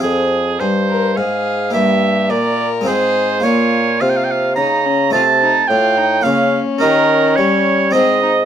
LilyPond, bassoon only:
\new Staff \with { instrumentName = "Bassoon" } { \clef bass \time 3/4 \key f \minor \tempo 4 = 106 f,4 g,4 aes,4 | g,4 bes,4 aes,4 | bes,4 c4 des4 | c4 a,4 des8 r8 |
ees4 g4 aes,4 | }